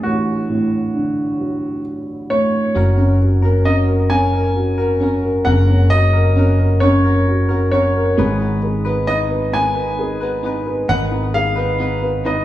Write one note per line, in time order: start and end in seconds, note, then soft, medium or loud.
0.00 2.71 A1 soft
0.00 0.94 D3 soft
0.00 0.46 F#3 soft
0.00 1.36 A3 soft
0.00 1.81 F#4 medium
0.49 2.26 A2 soft
0.94 2.71 D3 soft
1.39 2.71 F#3 soft
2.30 2.74 A3 soft
2.30 3.17 C#5 medium
2.74 5.43 F#1 medium
2.74 5.42 F#3 medium
2.74 2.98 F#3 medium
2.74 2.98 C#4 medium
2.74 2.98 F#4 medium
2.74 2.96 A#4 medium
2.97 3.63 C#4 soft
2.97 3.44 C#4 soft
2.97 3.43 F#4 soft
2.97 3.41 A#4 soft
3.20 4.54 F#4 soft
3.42 3.65 C#4 soft
3.42 3.66 F#4 soft
3.42 3.86 A#4 soft
3.42 3.65 A#4 soft
3.65 4.09 F#3 medium
3.65 4.08 C#4 soft
3.65 4.10 C#4 medium
3.65 4.11 F#4 medium
3.65 4.11 A#4 medium
3.65 3.76 D#5 medium
3.87 4.31 A#4 soft
4.10 4.33 F#3 medium
4.10 4.98 C#4 medium
4.10 4.34 C#4 medium
4.10 4.33 F#4 medium
4.10 4.32 A#4 medium
4.10 5.50 G#5 medium
4.32 4.80 C#4 soft
4.32 4.78 F#4 soft
4.32 4.76 A#4 soft
4.32 4.77 A#4 soft
4.55 5.89 F#4 medium
4.78 5.00 C#4 soft
4.78 5.01 F#4 soft
4.78 5.22 A#4 soft
4.78 5.01 A#4 soft
5.00 5.44 F#3 soft
5.00 5.66 C#4 soft
5.00 5.45 C#4 soft
5.00 5.46 F#4 medium
5.00 5.47 A#4 medium
5.23 6.12 A#4 soft
5.45 8.14 F#1 medium
5.45 8.13 C#3 medium
5.45 5.69 F#3 medium
5.45 5.69 C#4 medium
5.45 5.68 F#4 medium
5.45 5.67 A#4 medium
5.45 5.88 F#5 medium
5.68 6.34 C#4 soft
5.68 6.15 C#4 soft
5.68 6.14 F#4 soft
5.68 6.12 A#4 soft
5.90 7.25 F#4 soft
5.90 6.84 D#5 medium
6.13 6.36 C#4 soft
6.13 6.37 F#4 soft
6.13 6.36 A#4 soft
6.13 6.57 A#4 soft
6.36 6.80 F#3 medium
6.36 6.80 C#4 soft
6.36 6.81 C#4 medium
6.36 6.81 F#4 medium
6.36 6.82 A#4 medium
6.59 7.03 A#4 soft
6.80 7.04 F#3 medium
6.80 7.70 C#4 medium
6.80 7.05 C#4 medium
6.80 7.04 F#4 medium
6.80 7.03 A#4 medium
6.80 7.68 C#5 medium
7.04 7.50 C#4 soft
7.04 7.49 F#4 soft
7.04 7.48 A#4 soft
7.04 7.47 A#4 soft
7.27 8.15 F#4 medium
7.49 7.72 C#4 soft
7.49 7.72 F#4 soft
7.49 7.72 A#4 soft
7.49 7.93 A#4 soft
7.71 8.17 F#3 soft
7.71 8.16 C#4 soft
7.71 8.18 C#4 medium
7.71 8.18 F#4 medium
7.71 8.19 A#4 medium
7.71 8.58 C#5 medium
7.95 8.17 A#4 soft
8.17 10.85 G#1 medium
8.17 8.40 G#2 medium
8.17 8.40 D#3 medium
8.17 10.85 G#3 medium
8.17 8.41 G#3 medium
8.17 8.40 B3 medium
8.17 8.39 D#4 medium
8.17 8.38 B4 medium
8.39 8.87 G#3 soft
8.39 8.86 B3 soft
8.39 9.06 D#4 soft
8.39 8.85 D#4 soft
8.39 8.84 B4 soft
8.63 9.97 G#4 soft
8.85 9.06 G#3 soft
8.85 9.07 B3 soft
8.85 9.08 D#4 soft
8.85 9.08 B4 soft
8.85 9.29 B4 medium
9.07 9.52 G#3 medium
9.07 9.53 B3 medium
9.07 9.51 D#4 soft
9.07 9.53 D#4 medium
9.07 9.54 B4 medium
9.07 9.18 D#5 medium
9.30 9.74 B4 medium
9.53 9.76 G#2 medium
9.53 9.76 D#3 medium
9.53 9.76 G#3 medium
9.53 9.76 B3 medium
9.53 10.41 D#4 medium
9.53 9.75 D#4 medium
9.53 9.74 B4 medium
9.53 10.93 G#5 medium
9.75 10.22 G#3 soft
9.75 10.21 B3 soft
9.75 10.20 D#4 soft
9.75 10.20 B4 soft
9.75 10.19 B4 soft
9.99 11.32 G#4 medium
10.21 10.42 G#3 soft
10.21 10.43 B3 soft
10.21 10.44 D#4 soft
10.21 10.43 B4 soft
10.21 10.65 B4 soft
10.43 10.88 G#3 medium
10.43 10.89 B3 medium
10.43 11.10 D#4 soft
10.43 10.89 D#4 medium
10.43 10.90 B4 medium
10.66 11.55 B4 medium
10.88 12.45 G#1 medium
10.88 11.11 G#2 medium
10.88 12.45 D#3 medium
10.88 11.12 D#3 medium
10.88 11.12 G#3 medium
10.88 11.12 B3 medium
10.88 11.11 D#4 medium
10.88 11.10 B4 medium
10.88 10.99 F#5 medium
11.11 11.58 G#3 soft
11.11 11.57 B3 soft
11.11 11.78 D#4 medium
11.11 11.56 D#4 soft
11.11 11.54 B4 soft
11.34 12.45 G#4 medium
11.34 12.21 F5 medium
11.56 11.77 G#3 soft
11.56 11.78 B3 soft
11.56 11.79 D#4 soft
11.56 11.79 B4 medium
11.56 12.01 B4 medium
11.78 12.24 G#3 medium
11.78 12.24 B3 medium
11.78 12.24 D#4 soft
11.78 12.24 D#4 medium
11.78 12.25 B4 medium
12.02 12.45 B4 medium
12.24 12.45 G#2 medium
12.24 12.45 D#3 medium
12.24 12.45 G#3 medium
12.24 12.45 B3 medium
12.24 12.45 D#4 medium
12.24 12.45 B4 medium
12.24 12.45 D#5 medium